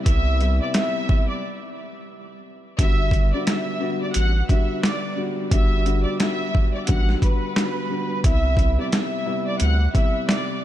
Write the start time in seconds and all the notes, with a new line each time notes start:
0.05 C2 C3 G3 B3 E4 E5 E6, kick, closed hi-hat
0.40 C3 G3 B3 E4, closed hi-hat
0.62 D5 D6
0.74 C3 G3 B3 E4 E5 E6, snare, closed hi-hat
1.09 kick
1.29 D5 D6
2.79 G1 D3 G3 B3 F#4 E5 E6, kick, closed hi-hat
3.11 kick, closed hi-hat
3.33 D3 G3 B3 F#4 D5 D6
3.47 E5 E6, snare, closed hi-hat
3.80 D3 G3 B3 F#4
4.02 D5 D6
4.13 A1 F#5 F#6, closed hi-hat
4.49 D3 G3 B3 F#4 E5 E6, kick, closed hi-hat
4.83 D5 D6, snare, closed hi-hat
5.16 D3 G3 B3 F#4
5.51 G1 D3 G3 B3 F#4 E5 E6, kick, closed hi-hat
5.85 D3 G3 B3 F#4, closed hi-hat
6.03 D5 D6
6.19 D3 G3 B3 F#4 E5 E6, snare, closed hi-hat
6.55 kick
6.74 D5 D6
6.87 A1 D3 G3 B3 F#4 F#5 F#6, kick, closed hi-hat
7.09 snare
7.22 B4 B5, kick, closed hi-hat
7.56 D3 G3 B3 F#4, snare, closed hi-hat
7.89 D3 G3 B3 F#4
8.24 C2 C3 G3 B3 E4 E5 E6, kick, closed hi-hat
8.57 kick, closed hi-hat
8.78 C3 G3 B3 E4 D5 D6
8.92 E5 E6, snare, closed hi-hat
9.26 C3 G3 B3 E4
9.47 D5 D6
9.60 D2 F#5 F#6, closed hi-hat
9.93 C3 G3 B3 E4 E5 E6, kick, closed hi-hat
10.29 D5 D6, snare, closed hi-hat